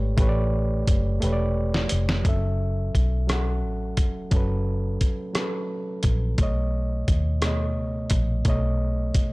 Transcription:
Already playing: G#1 A3 G4 B4 C#5 D5
0.17 A1 A3 G4 B4, kick, closed hi-hat
0.22 C#5
0.29 D5
0.88 F#1, kick, closed hi-hat
1.20 E1 A3 G4 B4, closed hi-hat
1.26 C#5
1.33 D5
1.74 snare
1.89 F1, closed hi-hat
2.09 snare
2.23 F#1 F#3 C#4 A4, kick, closed hi-hat
2.29 E5
2.95 B1, kick, closed hi-hat
3.27 F#3 C#4 A4, cross-stick, closed hi-hat
3.33 F#5
3.65 A1
3.97 F1, kick, closed hi-hat
4.31 F#1 F#3 C#4 A4, kick, closed hi-hat
4.36 B4
5.01 muted fingered electric bass stroke, kick, closed hi-hat
5.33 F#3 C#4 A4, cross-stick, closed hi-hat
5.39 B4
6.03 A#1, kick, closed hi-hat
6.38 B1 B2 A3 C#5, kick, closed hi-hat
6.43 D#5
7.08 D#2, kick, closed hi-hat
7.41 B2 A3 C#5, cross-stick, closed hi-hat
7.47 D#5
7.78 C#2
8.10 A#1, kick, closed hi-hat
8.45 B1 B2 A3 C#5, kick, closed hi-hat
8.50 D#5
9.14 muted fingered electric bass stroke, kick, closed hi-hat

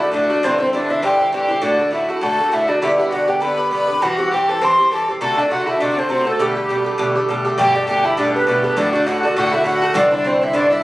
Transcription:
Already playing: E4 F#4
0.00 D3 A3 D5
0.12 A2 D3 A3 D4 F#4 D5
0.30 D3 A3 F#4
0.43 G2 D3 C4 E4 C5
0.58 D3 C4 E4 C5
0.73 G2 D3 C4 D4 E4 D5
0.89 D3 C4 E4 E5
1.02 G2 D3 C4 E4 G4 G5
1.19 D3 C4 E4
1.32 G2 D3 C4 E4 G4 G5
1.48 D3 C4 E4
1.62 A2 D3 A3 D4 F#4 D5
1.79 D3 A3 F#4
1.91 A2 D3 A3 E4 F#4 E5
2.08 D3 A3 F#4 F#5
2.21 A2 D3 A3 F#4 A4 A5
2.39 D3 A3 F#4
2.48 A2 E4 F#4
2.52 D3 A3 F#4 E5
2.68 D3 A3 D4 F#4 D5
2.82 G2 D3 B3 E4 G4 E5
2.98 D3 B3 E4 G4 E5
3.09 G2 D3 B3 F#4 G4 F#5
3.27 D3 B3 G4 G5
3.40 G2 D3 B3 G4 B4 B5
3.57 D3 B3 G4
3.71 G2 D3 B3 G4 B4 B5
3.87 D3 B3 G4
4.01 G2 E3 C4 F#4 G4 F#5
4.18 E3 C4 G4
4.32 G2 E3 C4 G4 G5
4.48 E3 C4 G4 A4 A5
4.61 G2 E3 C4 G4 C5 C6
4.78 E3 C4 G4
4.91 G2 E3 C4 G4 A4 A5
5.08 E3 C4 G4
5.20 C3 D3 A3 F#4 A4 A5
5.37 D3 A3 D4 F#4 D5
5.49 C3 D3 A3 F#4 F#5
5.66 D3 A3 E4 F#4 E5
5.78 C3 D3 A3 D4
5.82 F#4 D5
5.96 D3 A3 C4 F#4 C5
6.09 C3 D3 A3 C4 F#4 C5
6.21 B3
6.25 D3 A3 F#4 A4
6.39 B2 D3 G3 A3 G4
6.55 D3 A3 G4
6.69 B2 D3 A3 G4
6.84 D3 A3 G4
6.98 B2 D3 A3 G4
7.15 D3 A3 G4
7.29 B2 D3 A3 G4
7.45 D3 A3 G4
7.58 G1 B2 D3 A3 G4 G5
7.74 D3 A3 G4 D5
7.87 B2 D3 A3 G4 G5
8.03 D3 A3 E4 G4 E5
8.17 B2 D3 A3 D4 G4 D5
8.34 D3 A3 B3 G4 B4
8.47 B2 D3 A3 B3 G4 B4
8.62 D3 A3 B3 G4 B4
8.77 D2 A2 D3 A3 D4 F#4 D5
8.93 D3 A3 D4 F#4 D5
9.07 A2 D3 A3 F#4 F#5
9.23 D3 A3 F#4 D5
9.36 A2 D3 A3 F#4 F#5
9.52 D3 A3 E4 F#4 E5
9.64 A2 D3 A3 F#4 F#5
9.82 D3 A3 F#4
9.94 C2 G2 D3 C4 D4 E4 D5
10.11 D3 C4 D4 E4 D5
10.24 G2 D3 C4 E4 C5
10.41 D3 C4 E4 E5
10.50 G2 D3 D4 E4
10.54 C4 E4 D5
10.69 D3 C4 E4 E5

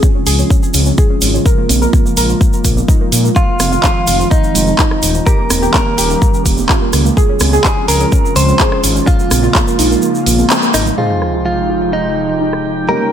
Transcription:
Already playing: C#3 F3 G#3 C4 F4
0.03 C#4, kick, shaker
0.15 C#4
0.26 C#2 G#4, open hi-hat, shaker
0.39 C#4, shaker
0.50 C#4, kick, shaker
0.63 shaker
0.74 C#2 C#4, open hi-hat, shaker
0.86 C#4, shaker
0.98 G#4, kick, shaker
1.10 C#4
1.21 G#1 C#4, open hi-hat, shaker
1.34 C#4, shaker
1.46 A#3 A#4, kick, shaker
1.58 A#3
1.69 A#1 A#3, open hi-hat, high conga, shaker
1.82 A#4, shaker
1.93 A#3, kick, shaker
2.06 A#3, shaker
2.17 A#1 A#4, open hi-hat, shaker
2.29 A#3, shaker
2.41 A#3, kick, shaker
2.53 shaker
2.64 A#1 A#3, kick, open hi-hat, shaker
2.77 A#3, high conga, shaker
2.88 D#4, kick, shaker
3.01 A#3
3.12 A#2 A#3, open hi-hat, shaker
3.25 A#3, shaker
3.36 D#3 C4 F4, kick, shaker
3.48 F3
3.59 F1 F3, cross-stick, open hi-hat, high conga, shaker
3.72 F4, shaker
3.83 F3 F4, kick, clap, shaker
3.96 F3
4.07 F1 F4, open hi-hat, shaker
4.20 F3, shaker
4.31 F3 D#4, kick, shaker
4.44 shaker
4.55 F1 F3, open hi-hat, low conga, shaker
4.67 F3, shaker
4.79 D#4, kick, clap, shaker
4.91 F3, cross-stick
5.02 D#1 F3, open hi-hat, shaker
5.14 F3, shaker
5.26 D#3 G3 A#3 C#4 G4 A#4, kick, shaker
5.39 A#3
5.50 D#1 A#3, cross-stick, open hi-hat, high conga, shaker
5.62 G4, shaker
5.74 A#3 A#4, kick, clap, shaker
5.86 A#3
5.98 D#1 G4, open hi-hat, shaker
6.10 A#3, shaker
6.22 A#3, kick, shaker
6.34 shaker
6.46 D#1 A#3, kick, open hi-hat, shaker
6.57 A#3, high conga, shaker
6.69 F4, kick, clap, shaker
6.82 A#3
6.93 C#2 A#3, cross-stick, open hi-hat, shaker
7.05 A#3, low conga, shaker
7.17 C#3 F3 G#3 C4 F4 G#4, kick, shaker
7.29 C#4
7.40 C#2 C#4, cross-stick, open hi-hat, high conga, shaker
7.53 G#4, shaker
7.64 C#4 G#4, kick, clap, shaker
7.77 C#4
7.88 C#2 G#4 A#4, open hi-hat, shaker
8.00 C#4, shaker
8.12 C#4, kick, shaker
8.25 shaker
8.36 C#2 C#4 C5, open hi-hat, low conga, shaker
8.48 C#4, shaker
8.59 G#4, kick, clap, shaker
8.72 C#4, cross-stick
8.83 G#1 C#4, open hi-hat, shaker
8.96 C#4, shaker
9.07 F3 A#3 F4, kick, shaker
9.19 A#3, shaker
9.31 A#1 A#3, cross-stick, open hi-hat, high conga, shaker
9.43 F4, shaker
9.55 A#3, kick, clap, shaker
9.67 A#3, shaker
9.79 A#1 D#4, open hi-hat, shaker
9.91 A#3, shaker
10.02 A#3, shaker
10.15 shaker
10.26 A#1 A#3, open hi-hat, shaker
10.39 A#3, high conga, shaker
10.50 C4, clap, shaker
10.62 A#3, shaker
10.74 G#1 A#3 D#4, cross-stick, open hi-hat, shaker
10.86 A#3, low conga, shaker
10.98 C3 F3 G#3 C4 D#4 F4 G4 G#4 G5, sub drop
11.10 F3
11.22 F3, cross-stick
11.34 F4
11.46 F3 F4
11.58 F3
11.70 F4
11.82 F3
11.93 F3 D#4
12.17 F3
12.29 F3
12.41 D#4
12.53 F3, cross-stick
12.65 F3
12.77 F3
12.88 C#3 G3 A#3 C#4 D#4 G4 A#4
13.01 A#3

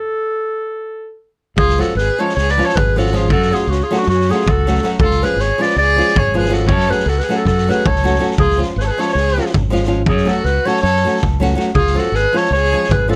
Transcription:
Already playing: A4
1.57 C#2 F4 G#4, kick
1.69 snare
1.78 F3 G#3 C#4 F4 F#4 A4, snare
1.95 G#1 G#4 B4, snare
2.19 F3 G#3 C#4 F4 A4 C#5
2.29 snare
2.35 C#2 G#4 C#5, snare
2.48 B4 D5, snare
2.57 F3 G#3 C#4 F4, snare
2.65 A4 C#5, snare
2.75 G#1 G#4 B4, kick
2.96 F3 G#3 C#4 F4 F#4 A4, snare
3.06 snare
3.13 F3 G#3 C#4 F4 G#4, snare
3.28 F#2 F#4 A4, kick
3.42 snare
3.51 F#3 A3 C#4 F4 F#4 G#4, snare
3.67 C#2 F#4
3.71 C#4, snare
3.83 F4 G#4
3.91 F#3 A3 C#4 F#4, snare
3.98 D4 F#4, snare
4.07 F#2 C#4 F#4, snare
4.20 snare
4.29 F#3 A3 C#4 F#4 G#4, snare
4.35 F4
4.39 snare
4.46 C#2 F#4 A4, kick
4.67 F#3 A3 C#4 F#4, snare
4.75 snare
4.83 F#3 A3 C#4 F#4, snare
4.99 C#2 A4, kick
5.04 F4
5.11 snare
5.22 F3 G#3 C#4 F4 G#4 B4, snare
5.36 G#1, snare
5.41 G#4 C#5
5.58 F3 G#3 C#4 F4, snare
5.62 B4 D5
5.69 snare
5.76 C#2 G#4 D5, snare
5.96 F3 G#3 C#4 F4, snare
6.08 snare
6.15 G#1 G#4 C#5, kick
6.34 F3 G#3 C#4 F4 G#4 B4
6.44 snare
6.49 F3 G#3 C#4 F4
6.53 F#4 A4, snare
6.66 F#2 C#5, kick
6.72 A4
6.80 snare
6.88 F#3 A3 C#4 F#4 B4, snare
6.92 G#4
6.99 snare
7.06 C#2 F#4 A4, snare
7.19 B4, snare
7.23 G#4
7.29 F#3 A3 C#4 F#4, snare
7.36 F#4 A4
7.45 F#2 F#4 A4, kick, snare
7.58 snare
7.68 F#3 A3 C#4 F#4 G#4 B4, snare
7.86 C#2 A4 C#5, kick
7.95 snare
8.04 F#3 A3 C#4 F#4, snare
8.15 snare
8.19 F#3 A3 C#4 F#4, snare
8.31 snare
8.38 C#2 F4 G#4, kick
8.50 snare
8.57 F3 G#3 C#4 F4
8.62 snare
8.76 G#1 G#4 B4, snare
8.82 A4 C#5
8.88 G#4 B4
8.98 F3 G#3 C#4 F4 A4 C#5, snare
9.08 snare
9.13 C#2 G#4 C#5, snare
9.28 snare
9.36 F3 G#3 C#4 F4, snare
9.46 snare
9.54 G#1, kick
9.70 F3 G#3 C#4 F4, snare
9.83 F3, snare
9.87 G#3 C#4 F4
10.06 F#2 C#4 G#4, kick
10.17 snare
10.25 F#3 A3 C#4 F#4 A4, snare
10.31 F#4
10.44 C#2 F#4 B4, snare
10.65 F#3 A3 C#4 F#4 A4 C#5, snare
10.76 snare
10.82 F#2 A4 C#5, snare
10.96 snare
11.05 F#3 A3 C#4 F#4, snare
11.16 snare
11.23 C#2, kick
11.40 F#3 A3 C#4 F#4, snare
11.55 F#3 A3 C#4 F#4, snare
11.75 C#2 F4 G#4, kick
11.87 snare
11.94 F3 G#3 C#4 F4 A4, snare
11.99 F#4
12.12 G#1 G#4 B4, snare
12.32 F3 G#3 C#4 F4, snare
12.37 A4 C#5
12.45 snare
12.51 C#2 C#5, snare
12.55 G#4
12.64 snare
12.72 F3 G#3 C#4 F4
12.84 snare
12.89 G#1 G#4 B4, kick
13.08 F3 G#3 C#4 F4 F#4 A4, snare

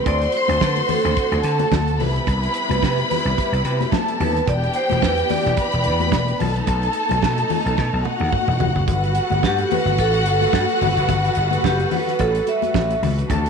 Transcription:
Already playing: A3 C4
0.05 D2 D3 F#4 C5 D5 C6, kick, closed hi-hat, muted conga
0.22 closed hi-hat
0.32 closed hi-hat, muted conga
0.37 C5
0.48 D2, closed hi-hat, high conga
0.61 D3 B4, kick, snare
0.76 closed hi-hat, high conga
0.89 A4, open hi-hat, muted conga, high conga, low conga
1.05 D2, closed hi-hat
1.17 kick, closed hi-hat
1.32 D2, closed hi-hat
1.43 D3 A4 A5, closed hi-hat, muted conga
1.59 closed hi-hat, high conga
1.72 D2, kick, snare, muted conga, high conga
1.88 closed hi-hat
1.98 C2 C3 G3 B3 E4 B4 B5, open hi-hat, muted conga, low conga
2.16 closed hi-hat
2.27 C2, kick, closed hi-hat
2.43 closed hi-hat
2.54 closed hi-hat
2.69 C2, closed hi-hat, high conga
2.83 C3, kick, snare
2.98 closed hi-hat, high conga
3.11 open hi-hat, muted conga, low conga
3.25 C2, closed hi-hat
3.38 kick, closed hi-hat, muted conga
3.52 C2, closed hi-hat
3.64 C3, closed hi-hat, muted conga
3.81 closed hi-hat, high conga
3.92 A4 A5, kick, snare, muted conga, high conga
4.08 closed hi-hat
4.20 D#2 B4, open hi-hat, muted conga, low conga
4.37 closed hi-hat
4.47 E1 E3 D4 G4 D5 G5, kick, closed hi-hat
4.63 closed hi-hat
4.74 C5, closed hi-hat, muted conga
4.90 E1, closed hi-hat, high conga
5.02 E2 B4, kick, snare
5.17 closed hi-hat, high conga
5.29 D5, open hi-hat, muted conga, high conga, low conga
5.45 E1, snare, closed hi-hat
5.57 B4 B5, kick, closed hi-hat, muted conga
5.72 E1, closed hi-hat
5.84 E2, closed hi-hat, muted conga
6.00 closed hi-hat, high conga
6.12 E1, kick, snare, muted conga, high conga
6.28 closed hi-hat
6.39 B1 A3 D#4 A4 A5, open hi-hat, low conga
6.56 closed hi-hat
6.67 B1, kick, closed hi-hat, muted conga
6.83 closed hi-hat
6.93 closed hi-hat, muted conga
7.09 B1, closed hi-hat, high conga
7.22 B2, kick, snare, muted conga
7.37 closed hi-hat, high conga
7.50 open hi-hat, muted conga, low conga
7.66 B1, closed hi-hat
7.77 B2, kick, snare, muted conga
7.93 B1
8.04 F#4 F#5, high tom, muted conga
8.20 D#2, high conga
8.32 kick, mid tom, high conga
8.47 E1, mid tom
8.60 F1, floor tom, muted conga, low conga
8.75 F#1, floor tom
8.88 G1 G3 F#4 A4 B4 F#5, kick, closed hi-hat, muted conga, low conga
9.04 closed hi-hat
9.15 closed hi-hat, muted conga
9.30 G1, closed hi-hat, high conga
9.43 G2 G4, kick, snare, muted conga
9.58 closed hi-hat, high conga
9.71 B4, open hi-hat, muted conga, high conga, low conga
9.85 G1, closed hi-hat
9.98 A1 A4, kick, closed hi-hat, muted conga
10.14 closed hi-hat
10.26 G1 A4, closed hi-hat, muted conga
10.41 closed hi-hat, high conga
10.53 G2, kick, snare, high conga
10.69 closed hi-hat
10.81 G1, open hi-hat, muted conga, low conga
10.97 F#1, closed hi-hat
11.09 G1, kick, closed hi-hat, muted conga, low conga
11.25 closed hi-hat
11.35 G1, closed hi-hat
11.51 closed hi-hat, high conga
11.64 F#1 G4, kick, snare, muted conga
11.79 closed hi-hat, high conga
11.91 B4, open hi-hat, muted conga, low conga
12.08 snare, closed hi-hat
12.19 A1 A4, kick, closed hi-hat, muted conga
12.35 closed hi-hat
12.47 E5, closed hi-hat, muted conga
12.62 closed hi-hat, high conga
12.74 A1, kick, snare, high conga
12.90 closed hi-hat
13.02 C#2, open hi-hat, muted conga, low conga
13.18 closed hi-hat
13.29 D2 D3 A3 C4 A4 A5, kick, closed hi-hat, muted conga, low conga
13.46 closed hi-hat

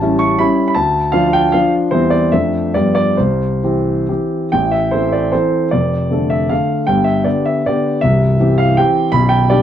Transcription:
Already playing: A1 A5
0.02 G3 C#4 E4
0.19 C#6
0.38 G3 C#4 E4 B5
0.68 B5
0.75 D2 A5
1.12 F3 D4 F4 F5
1.33 G5
1.52 F3 D4 F4 F5
1.91 E2 G3 C4 E4 C5
2.10 D5
2.32 F2 F3 A3 D4 E5
2.74 G2 F3 B3 G4 D5
2.95 D5
3.17 C2 C5
3.63 E3 C4 G4
4.09 E3 C4 G4
4.52 A1 A2 G5
4.71 E5
4.91 E3 C4 A4 C5
5.12 D5
5.32 E3 C4 A4 C5
5.71 F1 F2 D5
6.11 D3 A3 A4
6.30 E5
6.49 D3 A3 A4 F5
6.87 G1 G2 G5
7.04 E5
7.24 D3 B3 G4 D5
7.45 E5
7.66 D3 B3 G4 D5
8.01 C1 C2 E5
8.39 E3 C4 G4
8.58 F5
8.77 E3 C4 G4 G5
9.12 B0 B1 B5
9.29 G5
9.50 G3 D4 G4 D5

